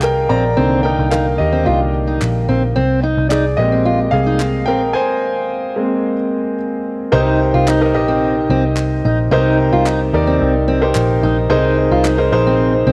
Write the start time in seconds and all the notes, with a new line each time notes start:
Already playing: C2 D#3 A#3 D4 G4 G#4 D5 D#5 F5
0.02 A#4 G5, clap
0.29 A#1 C4 D5 A#5
0.57 C2 D3 D#3 A#3 C4
0.83 D#4 A#4 G5
0.99 C2
1.11 D#4 A#4 F5, clap
1.38 D#2 G4 D#5
1.52 C4
1.65 C2 D#3 A#3 D4 F4 G4 D#5
2.07 D#4
2.22 A#1, clap
2.49 A#1 C4
2.76 C2 C4
3.03 D#4
3.18 C2
3.29 D#4 G#4 D5, clap
3.57 A#1 G#3 A#3 C4 G4 D#5
3.72 C4
3.85 F4
4.11 C2 G#4 F5
4.26 D#4
4.40 clap
4.66 A#1 C4 A#4 G5
4.93 C5 G#5
5.76 G#3 A#3 C4
7.12 C2 C3 D#4 G4 A#4 C5
7.54 C2 F4
7.68 D#4, clap
7.81 D#4 G4 A#4 D#5
7.94 A#1 D#4 G4 A#4 D#5
8.08 C4
8.50 C2 C4
8.77 clap
9.05 A#1 D#4
9.31 C2 C3 D#4 G4 A#4 C5
9.73 C2 F4
9.86 D#4, clap
10.13 D#2 D#4 G4 A#4 D5
10.27 C4
10.41 C2
10.68 C4
10.81 D#4 G4 A#4 C5
10.95 A#1, clap
11.23 A#1 D#4
11.50 C2 C3 D#4 G#4 A#4 C5
11.91 C2 F4
12.05 D#4, clap
12.18 D#4 G#4 A#4 C5
12.32 A#1 D#4 G#4 A#4 C5
12.47 C4
12.87 C2 C4